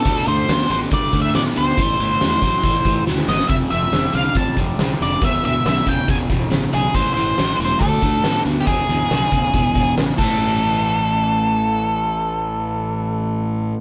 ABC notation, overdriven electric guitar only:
X:1
M:4/4
L:1/8
Q:1/4=139
K:Am
V:1 name="Overdriven electric guitar" clef=bass
[D,A,] [D,A,] [D,B,] [D,B,] [D,A,] [D,A,] [D,B,] [D,B,] | [A,,E,] [A,,E,] [A,,^F,] [A,,F,] [A,,E,] [A,,E,] [A,,F,] [A,,F,] | [F,,C,] [F,,C,] [F,,D,] [F,,D,] [F,,C,] [F,,C,] [F,,D,] [F,,D,] | [E,,B,,] [E,,B,,] [E,,^C,] [E,,C,] [E,,B,,] [E,,B,,] [E,,C,] [E,,C,] |
[A,,E,] [A,,E,] [A,,^F,] [A,,F,] [D,A,] [D,A,] [D,B,] [D,B,] | [E,,B,,] [E,,B,,] [E,,^C,] [E,,C,] [E,,B,,] [E,,B,,] [E,,C,] [A,,E,A,]- | [A,,E,A,]8- | [A,,E,A,]8 |]